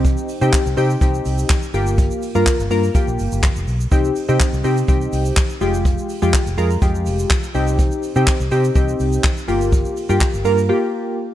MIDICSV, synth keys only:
0, 0, Header, 1, 2, 480
1, 0, Start_track
1, 0, Key_signature, -3, "minor"
1, 0, Tempo, 483871
1, 47, Time_signature, 4, 2, 24, 8
1, 11249, End_track
2, 0, Start_track
2, 0, Title_t, "Synth keys"
2, 0, Program_c, 0, 88
2, 0, Note_on_c, 0, 60, 89
2, 0, Note_on_c, 0, 63, 83
2, 0, Note_on_c, 0, 67, 96
2, 285, Note_off_c, 0, 60, 0
2, 286, Note_off_c, 0, 63, 0
2, 287, Note_off_c, 0, 67, 0
2, 410, Note_on_c, 0, 60, 94
2, 413, Note_on_c, 0, 63, 85
2, 416, Note_on_c, 0, 67, 105
2, 591, Note_off_c, 0, 60, 0
2, 593, Note_off_c, 0, 63, 0
2, 594, Note_off_c, 0, 67, 0
2, 763, Note_on_c, 0, 60, 94
2, 766, Note_on_c, 0, 63, 85
2, 768, Note_on_c, 0, 67, 108
2, 894, Note_off_c, 0, 60, 0
2, 895, Note_off_c, 0, 63, 0
2, 896, Note_off_c, 0, 67, 0
2, 1004, Note_on_c, 0, 60, 87
2, 1006, Note_on_c, 0, 63, 80
2, 1009, Note_on_c, 0, 67, 99
2, 1493, Note_off_c, 0, 60, 0
2, 1494, Note_off_c, 0, 63, 0
2, 1495, Note_off_c, 0, 67, 0
2, 1724, Note_on_c, 0, 58, 88
2, 1726, Note_on_c, 0, 65, 80
2, 1729, Note_on_c, 0, 67, 100
2, 2205, Note_off_c, 0, 58, 0
2, 2206, Note_off_c, 0, 65, 0
2, 2207, Note_off_c, 0, 67, 0
2, 2331, Note_on_c, 0, 58, 90
2, 2333, Note_on_c, 0, 65, 86
2, 2336, Note_on_c, 0, 70, 102
2, 2511, Note_off_c, 0, 58, 0
2, 2513, Note_off_c, 0, 65, 0
2, 2514, Note_off_c, 0, 70, 0
2, 2684, Note_on_c, 0, 58, 95
2, 2687, Note_on_c, 0, 65, 81
2, 2689, Note_on_c, 0, 70, 105
2, 2814, Note_off_c, 0, 58, 0
2, 2815, Note_off_c, 0, 65, 0
2, 2817, Note_off_c, 0, 70, 0
2, 2923, Note_on_c, 0, 58, 88
2, 2926, Note_on_c, 0, 65, 79
2, 2928, Note_on_c, 0, 67, 99
2, 3412, Note_off_c, 0, 58, 0
2, 3414, Note_off_c, 0, 65, 0
2, 3415, Note_off_c, 0, 67, 0
2, 3883, Note_on_c, 0, 60, 99
2, 3886, Note_on_c, 0, 63, 87
2, 3889, Note_on_c, 0, 67, 103
2, 4071, Note_off_c, 0, 60, 0
2, 4072, Note_off_c, 0, 63, 0
2, 4074, Note_off_c, 0, 67, 0
2, 4251, Note_on_c, 0, 60, 96
2, 4253, Note_on_c, 0, 63, 85
2, 4255, Note_on_c, 0, 67, 100
2, 4431, Note_off_c, 0, 60, 0
2, 4432, Note_off_c, 0, 63, 0
2, 4434, Note_off_c, 0, 67, 0
2, 4602, Note_on_c, 0, 60, 95
2, 4605, Note_on_c, 0, 63, 84
2, 4607, Note_on_c, 0, 67, 101
2, 4733, Note_off_c, 0, 60, 0
2, 4734, Note_off_c, 0, 63, 0
2, 4736, Note_off_c, 0, 67, 0
2, 4844, Note_on_c, 0, 60, 86
2, 4846, Note_on_c, 0, 63, 77
2, 4849, Note_on_c, 0, 67, 99
2, 5332, Note_off_c, 0, 60, 0
2, 5333, Note_off_c, 0, 63, 0
2, 5335, Note_off_c, 0, 67, 0
2, 5564, Note_on_c, 0, 56, 89
2, 5566, Note_on_c, 0, 65, 84
2, 5569, Note_on_c, 0, 67, 100
2, 6045, Note_off_c, 0, 56, 0
2, 6046, Note_off_c, 0, 65, 0
2, 6048, Note_off_c, 0, 67, 0
2, 6170, Note_on_c, 0, 56, 89
2, 6172, Note_on_c, 0, 65, 87
2, 6175, Note_on_c, 0, 67, 98
2, 6351, Note_off_c, 0, 56, 0
2, 6352, Note_off_c, 0, 65, 0
2, 6353, Note_off_c, 0, 67, 0
2, 6523, Note_on_c, 0, 56, 92
2, 6525, Note_on_c, 0, 65, 89
2, 6528, Note_on_c, 0, 70, 103
2, 6653, Note_off_c, 0, 56, 0
2, 6655, Note_off_c, 0, 65, 0
2, 6656, Note_off_c, 0, 70, 0
2, 6764, Note_on_c, 0, 56, 89
2, 6766, Note_on_c, 0, 65, 80
2, 6769, Note_on_c, 0, 67, 94
2, 7253, Note_off_c, 0, 56, 0
2, 7254, Note_off_c, 0, 65, 0
2, 7255, Note_off_c, 0, 67, 0
2, 7484, Note_on_c, 0, 60, 87
2, 7487, Note_on_c, 0, 63, 82
2, 7489, Note_on_c, 0, 67, 100
2, 7965, Note_off_c, 0, 60, 0
2, 7966, Note_off_c, 0, 63, 0
2, 7968, Note_off_c, 0, 67, 0
2, 8093, Note_on_c, 0, 60, 96
2, 8096, Note_on_c, 0, 63, 84
2, 8097, Note_on_c, 0, 67, 102
2, 8272, Note_off_c, 0, 60, 0
2, 8274, Note_off_c, 0, 63, 0
2, 8275, Note_off_c, 0, 67, 0
2, 8445, Note_on_c, 0, 60, 93
2, 8447, Note_on_c, 0, 63, 85
2, 8450, Note_on_c, 0, 67, 105
2, 8575, Note_off_c, 0, 60, 0
2, 8576, Note_off_c, 0, 63, 0
2, 8577, Note_off_c, 0, 67, 0
2, 8685, Note_on_c, 0, 60, 88
2, 8687, Note_on_c, 0, 63, 81
2, 8690, Note_on_c, 0, 67, 100
2, 9173, Note_off_c, 0, 60, 0
2, 9174, Note_off_c, 0, 63, 0
2, 9175, Note_off_c, 0, 67, 0
2, 9403, Note_on_c, 0, 58, 85
2, 9406, Note_on_c, 0, 65, 82
2, 9408, Note_on_c, 0, 67, 96
2, 9884, Note_off_c, 0, 58, 0
2, 9886, Note_off_c, 0, 65, 0
2, 9887, Note_off_c, 0, 67, 0
2, 10011, Note_on_c, 0, 58, 89
2, 10014, Note_on_c, 0, 65, 87
2, 10016, Note_on_c, 0, 67, 107
2, 10192, Note_off_c, 0, 58, 0
2, 10193, Note_off_c, 0, 65, 0
2, 10194, Note_off_c, 0, 67, 0
2, 10364, Note_on_c, 0, 58, 93
2, 10366, Note_on_c, 0, 65, 84
2, 10369, Note_on_c, 0, 70, 107
2, 10494, Note_off_c, 0, 58, 0
2, 10495, Note_off_c, 0, 65, 0
2, 10496, Note_off_c, 0, 70, 0
2, 10604, Note_on_c, 0, 58, 89
2, 10607, Note_on_c, 0, 65, 81
2, 10609, Note_on_c, 0, 67, 99
2, 11093, Note_off_c, 0, 58, 0
2, 11094, Note_off_c, 0, 65, 0
2, 11095, Note_off_c, 0, 67, 0
2, 11249, End_track
0, 0, End_of_file